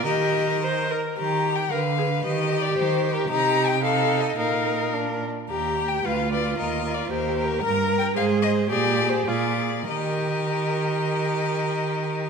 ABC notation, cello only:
X:1
M:2/4
L:1/8
Q:1/4=110
K:Eb
V:1 name="Cello" clef=bass
E,3 z | E,2 D,2 | E,2 E,2 | C,4 |
B,,3 z | E,,2 D,,2 | E,,2 E,,2 | G,,2 A,,2 |
B,,2 B,,2 | E,4- | E,4 |]